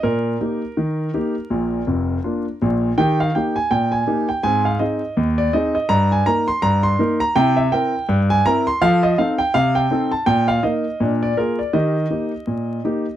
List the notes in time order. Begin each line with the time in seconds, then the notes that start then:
0.03 A#2 A#4
0.40 A#3 D#4 G4
0.77 D#3
1.14 A#3 D#4 G4
1.50 A#1 A#2
1.87 F1 F2
2.24 A#3 D4 F4
2.62 A#1 A#2
2.98 D#3 G4 G5
3.20 F5
3.35 A#3 D#4 G4 G5
3.56 G#5
3.71 A#2 G5
3.92 G#5
4.07 A#3 D#4 G4
4.29 G5
4.43 G#2 C4 G#5
4.65 F5
4.79 C4 D#4 G#4 D#5
5.17 D#2
5.38 D5
5.53 C4 D#4 G#4 D#5
5.75 D#5
5.89 G2 A#5
6.12 G#5
6.26 A#3 D#4 A#4 A#5
6.48 C6
6.62 G2 A#5
6.83 C6
6.99 A#3 D#4 A#4
7.20 A#5
7.36 C3 E4 G5
7.57 E5
7.72 C4 E4 A#4 G5
8.09 G2
8.30 G#5
8.46 C4 E4 A#4 A#5
8.67 C6
8.82 F3 A4 F5
9.03 D#5
9.18 C4 D#4 A4 F5
9.38 G5
9.54 C3 F5
9.75 G5
9.91 C4 D#4 A4
10.11 A5
10.26 A#2 G5
10.48 F5
10.63 A#3 D#4 A#4 D#5
11.00 A#2 D4
11.23 D5
11.37 A#3 F4 G#4 A#4
11.59 D5
11.73 D#3 G4 D#5
12.10 A#3 D#4 G4
12.47 A#2
12.84 A#3 D#4 G4